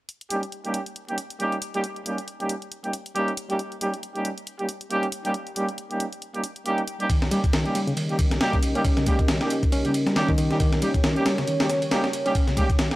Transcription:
0.09 closed hi-hat
0.21 closed hi-hat
0.30 G3 A#3 C#4 D#4 G4, closed hi-hat
0.43 closed hi-hat
0.52 closed hi-hat
0.65 G3 A#3 C#4 D#4 G4, closed hi-hat
0.74 closed hi-hat
0.86 closed hi-hat
0.96 closed hi-hat
1.09 G3 A#3 C#4 D#4 G4, closed hi-hat
1.18 closed hi-hat
1.30 closed hi-hat
1.40 G3 A#3 C#4 D#4 G4, closed hi-hat
1.52 closed hi-hat
1.62 closed hi-hat
1.74 G3 A#3 C#4 D#4 G4, closed hi-hat
1.84 closed hi-hat
1.96 closed hi-hat
2.06 G3 A#3 C#4 D#4 G4, closed hi-hat
2.18 closed hi-hat
2.28 closed hi-hat
2.40 G3 A#3 C#4 D#4 G4, closed hi-hat
2.49 closed hi-hat
2.62 closed hi-hat
2.72 closed hi-hat
2.84 G3 A#3 C#4 D#4 G4, closed hi-hat
2.93 closed hi-hat
3.06 closed hi-hat
3.15 G3 A#3 C#4 D#4 G4, closed hi-hat
3.28 closed hi-hat
3.37 closed hi-hat
3.50 G3 A#3 C#4 D#4 G4, closed hi-hat
3.59 closed hi-hat
3.72 closed hi-hat
3.81 G3 A#3 C#4 D#4 G4, closed hi-hat
3.94 closed hi-hat
4.03 closed hi-hat
4.15 G3 A#3 C#4 D#4 G4, closed hi-hat
4.25 closed hi-hat
4.38 closed hi-hat
4.47 closed hi-hat
4.59 G3 A#3 C#4 D#4 G4, closed hi-hat
4.69 closed hi-hat
4.81 closed hi-hat
4.90 G3 A#3 C#4 D#4 G4, closed hi-hat
5.03 closed hi-hat
5.12 closed hi-hat
5.25 G3 A#3 C#4 D#4 G4, closed hi-hat
5.34 closed hi-hat
5.47 closed hi-hat
5.56 G3 A#3 C#4 D#4 G4, closed hi-hat
5.69 closed hi-hat
5.78 closed hi-hat
5.91 G3 A#3 C#4 D#4 G4, closed hi-hat
6.00 closed hi-hat
6.13 closed hi-hat
6.22 closed hi-hat
6.34 G3 A#3 C#4 D#4 G4, closed hi-hat
6.44 closed hi-hat
6.56 closed hi-hat
6.66 G3 A#3 C#4 D#4 G4, closed hi-hat
6.78 closed hi-hat
6.88 closed hi-hat
7.00 G3 A#3 C#4 D#4 G4, closed hi-hat
7.09 D#3 C#4 G4 A#4 D#5, kick, closed hi-hat, ride
7.22 snare, closed hi-hat
7.31 G3 A#3 C#4 D#4 G4, closed hi-hat, ride
7.44 kick, closed hi-hat
7.53 D#3, snare, closed hi-hat, ride
7.66 G3 A#3 C#4 D#4 G4, closed hi-hat
7.75 G3, closed hi-hat, ride
7.87 C#3, closed hi-hat
7.97 D#3, closed hi-hat, ride
8.09 G3 A#3 C#4 D#4 G4, closed hi-hat
8.19 kick, closed hi-hat, ride
8.31 snare, closed hi-hat
8.41 G3 A#3 C#4 D#4 G4, snare, closed hi-hat, ride
8.53 kick, closed hi-hat
8.63 closed hi-hat, ride
8.75 G3 A#3 C#4 D#4 G4, closed hi-hat, ride
8.85 kick, closed hi-hat, ride
8.97 C#3, snare, closed hi-hat
9.06 G3 G#3 A#3 C#4 D#4 G4, kick, closed hi-hat, ride
9.19 kick, closed hi-hat
9.28 D#3, snare, closed hi-hat, ride
9.41 G3 A#3 C#4 D#4 G4, snare, closed hi-hat
9.50 closed hi-hat, ride
9.63 kick, closed hi-hat
9.72 C#4, closed hi-hat, ride
9.85 C#3 G3 A#3 C#4 D#4 G4, closed hi-hat, ride
9.94 closed hi-hat, ride
10.07 G3, snare, closed hi-hat
10.16 D#3 G3 A#3 C#4 D#4 G4, snare, closed hi-hat, ride
10.28 D#3, kick, closed hi-hat
10.38 D#3, closed hi-hat, ride
10.50 G3 A#3 C#4 D#4 G4, snare, closed hi-hat
10.60 D#3 C#5, kick, closed hi-hat, ride
10.72 snare, closed hi-hat
10.82 G3 A#3 C#4 D#4 G4, closed hi-hat, ride
10.94 kick, closed hi-hat
11.04 D#3, snare, closed hi-hat, ride
11.16 G3 A#3 C#4 D#4 G4, closed hi-hat
11.26 G3, snare, closed hi-hat, ride
11.38 C#3, snare, closed hi-hat
11.47 D#3, closed hi-hat, ride
11.60 G3 A#3 C#4 D#4 G4, snare, closed hi-hat, ride
11.70 snare, closed hi-hat
11.82 closed hi-hat, ride
11.91 G3 A#3 C#4 D#4 G4, snare, closed hi-hat, ride
12.04 snare, closed hi-hat
12.13 closed hi-hat, ride
12.26 G3 A#3 C#4 D#4 G4, closed hi-hat, ride
12.35 kick, closed hi-hat, ride
12.47 C#3, snare, closed hi-hat
12.57 G3 G#3 A#3 C#4 D#4 G4, kick, closed hi-hat, ride
12.69 kick, closed hi-hat
12.79 D#3, snare, closed hi-hat, ride
12.91 G3 A#3 C#4 D#4 G4, snare, closed hi-hat

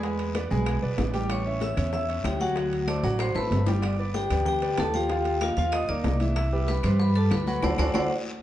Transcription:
Already playing: E2 B4 B5
0.03 G#3 G#4 G#5, high bongo, high conga, high timbale, long guiro
0.19 high bongo, high conga, high timbale
0.35 B3 B4 D5, high bongo, high conga, high timbale, short guiro, claves
0.51 B1 G#3 G#4 G#5, high conga, short guiro
0.66 high bongo, high conga, high timbale, long guiro, claves
0.82 B1 B3 B4 D5, high bongo, high conga
0.98 A1, high bongo, low bongo, high conga, high timbale, low timbale, short guiro
1.13 G3 G4 G5, high bongo, high conga, high timbale, short guiro
1.30 C#5 C#6, high bongo, high conga, high timbale, long guiro, claves
1.45 C#4 C#5 E5, high conga
1.61 E5 E6, high bongo, high conga, high timbale, short guiro
1.77 E2 C#4 C#5 E5, high conga, low conga, high timbale, short guiro, claves
1.93 E5 E6, high bongo, high conga, low conga, long guiro
2.08 C#4 C#5 E5, high conga, high timbale
2.24 D2 G4 G5, high bongo, low bongo, high conga, high timbale, short guiro, claves
2.40 F#3 F#4 F#5, high conga, short guiro
2.56 F#3 F#4 F#5, high bongo, high conga, high timbale, long guiro
2.72 high bongo, high conga, high timbale
2.87 A3 A4 C5 D5 D6, high bongo, high conga, high timbale, short guiro, claves
3.03 A1 F#3 F#4 D5 F#5 D6, high bongo, high conga, short guiro
3.19 C5 C6, high bongo, high conga, high timbale, long guiro, claves
3.35 A1 A3 C4 A4 B4 B5, low bongo, high conga
3.51 G1, high conga, high timbale, low timbale, short guiro
3.67 G3 G4 G5, low bongo, high conga, high timbale, short guiro
3.82 D5 D6, high bongo, high conga, high timbale, long guiro, claves
3.99 B3 B4 D5, high conga
4.14 G4 G5, high bongo, high conga, high timbale, short guiro
4.30 D2 B3 B4 D5, high conga, low conga, high timbale, short guiro, claves
4.46 G4 G5, high bongo, high conga, low conga, long guiro
4.62 B3 B4 D5, high conga, high timbale
4.78 D#2 A4 A5, high bongo, low bongo, high conga, high timbale, low timbale, short guiro, claves
4.94 F3 F4 G4 F5 G5, high conga, short guiro
5.09 F3 F4 F5, high bongo, high conga, high timbale, long guiro
5.25 high bongo, high conga, high timbale
5.41 A#3 F4 A#4 D#5 F5, high bongo, high conga, high timbale, short guiro, claves
5.57 D#2 F3 F4 F5, high conga, short guiro
5.72 D#5 D#6, high bongo, high conga, high timbale, long guiro, claves
5.89 D2 A#3 D#4 A#4 D5 D6, high bongo
6.04 C2, high bongo, low bongo, high conga, high timbale, low timbale, short guiro
6.20 E3 E4 E5, high bongo, high conga, high timbale, short guiro
6.36 E5 E6, high bongo, high conga, high timbale, long guiro, claves
6.53 G3 G4 B4, high conga
6.68 B4 B5, high bongo, high conga, high timbale, short guiro
6.83 G2 G3 G4 B4 C5 C6, high conga, low conga, high timbale, short guiro, claves
6.99 B4 B5, high bongo, high conga, long guiro
7.15 G3 G4 A4 B4 A5, high conga, high timbale
7.31 D2 B4 B5, high bongo, low bongo, high conga, high timbale, short guiro, claves
7.46 F#3 F#4 B4 F#5 B5, high conga, short guiro
7.62 D2 D4 F#4 A4 C5 D5 F#5, low bongo, high conga, high timbale, long guiro, claves
7.78 D2 D4 F#4 A4 C5 D5 F#5, low bongo, high conga, high timbale, long guiro, claves
7.94 D2 D4 F#4 A4 C5 D5 F#5, low bongo, high conga, high timbale, long guiro, claves

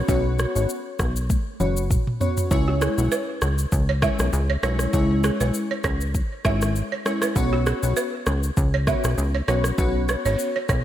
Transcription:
0.08 B1 B3 C#4 F#4 C#5, kick, shaker
0.39 cross-stick, shaker
0.55 G#1 B3 C#4 F#4 C#5, shaker
0.69 shaker
0.99 B1, kick, cross-stick, shaker
1.16 shaker
1.30 kick, high tom, shaker
1.60 F#1 B3 C#4 F#4 C#5, mid tom, shaker
1.77 shaker
1.91 kick, mid tom, shaker
2.07 mid tom
2.20 B3 C#4 F#4 C#5, floor tom, shaker
2.37 floor tom, shaker
2.51 C#2 G#3 C#4 E4 C#5, kick, shaker
2.68 F#4
2.81 G#4, cross-stick, shaker
2.98 B1 G#3 C#4 E4 C#5, shaker
3.12 B4, shaker
3.42 C#2, cross-stick, shaker
3.58 shaker
3.72 C#2, kick, shaker
3.89 C#5
4.02 G#3 C#4 E4 C#5 E5, kick, cross-stick, shaker
4.19 B1, cross-stick, shaker
4.33 C#2, shaker
4.50 C#5
4.63 B1 G#3 C#4 E4 C#5, cross-stick, shaker
4.79 cross-stick, shaker
4.93 C#2 G#3 C#4 E4 C#5, kick, shaker
5.24 G#4, cross-stick, shaker
5.40 B1 G#3 C#4 E4 B4 C#5, shaker
5.54 shaker
5.71 C#5
5.84 C#2 C#5, kick, cross-stick, shaker
6.01 shaker
6.15 kick, shaker
6.45 G#1 G#3 C#4 E4 C#5 E5, kick, cross-stick, shaker
6.61 cross-stick, shaker
6.76 shaker
6.92 C#5
7.05 G#3 C#4 E4 C#5, cross-stick, shaker
7.22 B4, cross-stick, shaker
7.36 B1 B3 C#4 F#4 C#5, kick, shaker
7.53 F#4
7.66 G#4, cross-stick, shaker
7.83 B1 B3 C#4 F#4 C#5, shaker
7.97 B4, shaker
8.26 C#2, cross-stick, shaker
8.43 shaker
8.57 C#2, kick, shaker
8.74 C#5
8.87 B3 C#4 F#4 C#5 E5, kick, cross-stick, shaker
9.04 B1, cross-stick, shaker
9.18 C#2, shaker
9.35 C#5
9.48 B1 B3 C#4 F#4 C#5, cross-stick, shaker
9.64 cross-stick, shaker
9.78 B1 B3 C#4 F#4 C#5, kick, shaker
10.09 B4, cross-stick, shaker
10.25 G#1 B3 C#4 F#4 C#5, shaker
10.39 shaker
10.56 C#5
10.69 B1 C#5, kick, cross-stick, shaker

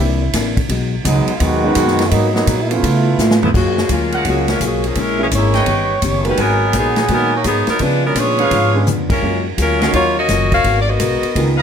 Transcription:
Already playing: E4
0.00 C2 C3 E3 A#3 D4
0.33 A1 C3 E3 A#3 D4, kick, snare, hi-hat pedal, ride
0.57 kick, ride
0.69 B1 B2 F#3 G#3 D#4, kick, ride
1.04 C#2 B2 F#3 G#3 B3 D#4, kick, hi-hat pedal, ride
1.27 muted upright bass stroke, ride
1.36 B2 G#3 F4
1.40 D#2 D#3 F#3 G#3 B3 D#4 F#4, kick, ride
1.63 F#3 G#3 B3 C#4 D#4
1.75 F#2 B2 F#3 G#3 D#4, kick, hi-hat pedal, ride
1.87 snare
1.99 snare, ride
2.08 G#2 F#3 G#3 A#3 B3 D#4, kick, ride
2.13 F#4 A#4
2.33 F#3 A#3 B3 D#4, snare
2.47 A#2 G#3 B3 F#4 A#4, kick, hi-hat pedal, ride
2.62 E4
2.68 F3 A3 B3 C#4 E4 F4, ride
2.83 C#3 A3 B3 F4, kick, ride
3.18 A2 C#3 A3 B3 F4, snare, hi-hat pedal
3.31 snare
3.43 F3 B3 E4 A4, floor tom
3.54 F#2 C#3 F#3 G#3 A#3 F4 F#4 G#4, kick, crash
3.78 snare
3.89 D2 F#3 G#3 A#3 C#4 F4 G#4, kick, hi-hat pedal, ride
4.12 G#4 A#4 F5 F#5, ride
4.25 C#2 C#3 F#3 G#3 A#3 C#4 F4 G#4, kick, ride
4.29 G#3 A#3 F#4
4.48 G#3 C#4, snare, ride
4.52 F4 A#4
4.60 B1 F#3 A#3 F4 G#4, kick, hi-hat pedal, ride
4.66 C#3 G#3 A#3 F#4
4.84 F3 G#4, ride
4.88 A#3 C#4
4.95 A#1 A#2 G#3 C#4 E4, kick, ride
5.00 G#3 C#4 E4 A#4
5.18 G#3 A#3 C#4 E4
5.23 E3 A#3 C#4 G#4
5.31 G#1 A#2 G#3 C#4 E4, kick, hi-hat pedal, ride
5.36 A#3 E4 G#4 C#5
5.53 B4 C#5 D#5 G5, snare, ride
5.66 G1 D#3 B3 C#4 G4, kick, ride
6.02 F#1 D#3 B3 C#4 G4, kick, hi-hat pedal, ride
6.24 D#3 G#3 A#3 B3 F#4, ride
6.29 G3 C#4 F#4 B4
6.37 G#1 G#3 B3 F#4 A#4 F#5 G#5, kick, ride
6.42 F#3 B3 D#4 A#4
6.73 A#1 G#3 B3 F#4 A#4, kick, hi-hat pedal, ride
6.79 F#3 B3 D#4 G#4
6.96 snare, ride
7.08 A#2 D#3 G#3 A#3 B3 F#4 A#4, kick, ride
7.13 F#3 B3 D#4 A#4
7.35 A#3 D#4 F#4 C#5
7.44 G#2 F#3 G#3 B3 D#4 F#4 G#4 A#4, kick, hi-hat pedal, ride
7.67 F#3 B3 D#4 A#4, muted upright bass stroke, snare, ride
7.79 C#3 F3 G#3 B3 C#4 D4 F4 B4, kick, ride
8.06 F#3 B3 D4 A#4
8.15 A#2 C#3 F3 B3 D4 F4 G#4 B4 C#5, kick, hi-hat pedal, ride
8.38 D3 G#3 B3 C#4 D4 F4 B4 C#5 F5, ride
8.51 G#2 C#3 F3 B3 D4, kick, ride
8.74 D3 G#3 B3 C#4 G#4
8.86 F2 C#3 F3 B3 D4, hi-hat pedal, mid tom
9.10 G#3 C#4 F4 A#4, kick, ride
9.22 F#2 F#3 G#3 A#3 C#4 F4 G#4
9.57 D2 F#3 G#3 A#3 C#4 F4 G#4 A#4, kick, hi-hat pedal, ride
9.61 F4
9.79 D#3 F#3 A#3 C#4 F4 F#4 C#5 D#5 F5, snare, ride
9.93 D#2 D#3 F#3 A#3 C#4 F4 F#4 C#5, kick, ride
10.19 C#4 F#4 A#4 D#5
10.28 F#1 D#3 F#3 C#4 F4, kick, snare, hi-hat pedal, ride
10.52 C#4 F#4 A#4 F5, kick, ride
10.64 G#1 G#3 B3 F#4 A#4, kick, ride
10.81 D5
10.90 B3 F#4 A#4 D#5
11.00 B1 G#3 B3 F#4 A#4, kick, hi-hat pedal, ride
11.22 muted upright bass stroke, ride
11.35 C#2 C#3 D#3 G#3 A#3 B3 F4 A#4, kick, ride
11.57 B4 D#5 F5 A#5

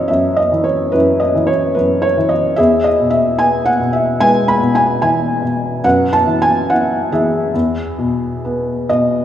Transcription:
Already playing: F#2 E3 B4 C#5 D#5 E5
0.08 F#2 E5
0.37 D#5
0.52 E3
0.64 C#5
0.92 F#2 E4 B4
1.20 D#5
1.35 E3
1.47 C#5
1.75 F#2 B4
2.02 C#5
2.17 E3
2.29 D#5
2.56 E2 G#4 E5
2.84 D#5
3.00 B2
3.10 E5
3.39 B3 G#5
3.66 F#5
3.80 B2
3.93 E5
4.20 G#3 B4 G#5
4.48 B5
4.61 B2
4.75 G#5
5.02 E3 G#5
5.43 B2
5.84 F#2 B4 F#5
6.13 A5
6.27 E3
6.42 G#5
6.69 E4 F#5
7.12 E3 G#4 E5
7.54 E2
7.98 B2
8.45 B3
8.89 B2 D#5

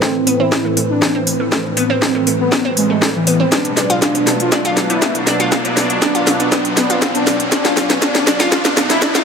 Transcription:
Already playing: A2 E3 C4 B4, riser
0.02 A3 C4, kick, snare
0.27 B3, open hi-hat
0.40 C4 E4
0.52 kick, snare
0.65 A3
0.77 A3, open hi-hat
0.90 D4
1.02 B3, kick, snare
1.15 C4
1.27 open hi-hat
1.40 A3
1.52 A3, kick, snare
1.77 B3, open hi-hat
1.90 C4
2.02 C4, kick, snare
2.15 A3
2.27 A3, open hi-hat
2.40 B3
2.52 B3, kick, snare
2.65 C4
2.77 G#3, open hi-hat
2.90 A3
3.02 A3, kick, snare
3.15 E3
3.27 B3, open hi-hat
3.40 C4
3.52 B2 F#3 B3 D4, kick, snare, closed hi-hat
3.65 closed hi-hat
3.77 D4, snare, open hi-hat
3.90 F4, closed hi-hat
4.02 D4 F4, kick, snare, closed hi-hat
4.15 B3, closed hi-hat
4.27 B3, snare, open hi-hat
4.40 F4, closed hi-hat
4.52 D4, kick, snare, closed hi-hat
4.65 F4, closed hi-hat
4.77 F4, snare, open hi-hat
4.90 B3 E4, closed hi-hat
5.02 B3, kick, snare, closed hi-hat
5.15 closed hi-hat
5.27 D4, snare, open hi-hat
5.40 F4, closed hi-hat
5.52 F4, kick, snare, closed hi-hat
5.65 B3, closed hi-hat
5.77 B3, snare, open hi-hat
5.90 closed hi-hat
6.02 D4, kick, snare, closed hi-hat
6.15 F4, closed hi-hat
6.27 F4, snare, open hi-hat
6.40 B3 D4, closed hi-hat
6.52 B3, kick, snare, closed hi-hat
6.65 closed hi-hat
6.77 B3 D4, snare, open hi-hat
6.90 F4, closed hi-hat
7.02 F4, kick, snare, closed hi-hat
7.15 B3 D4, closed hi-hat
7.27 B3, snare, open hi-hat
7.40 closed hi-hat
7.52 D4, kick, snare, closed hi-hat
7.65 F4, snare, closed hi-hat
7.77 F4, snare, open hi-hat
7.90 B3, snare, closed hi-hat
8.02 B3 D4, kick, snare, closed hi-hat
8.15 snare, closed hi-hat
8.27 D4, snare, open hi-hat
8.40 F4, snare, closed hi-hat
8.52 F4, kick, snare, closed hi-hat
8.65 B3, snare, closed hi-hat
8.77 B3, snare, open hi-hat
8.90 E4, snare, closed hi-hat
9.02 D4, kick, snare, closed hi-hat
9.15 F4, snare, closed hi-hat

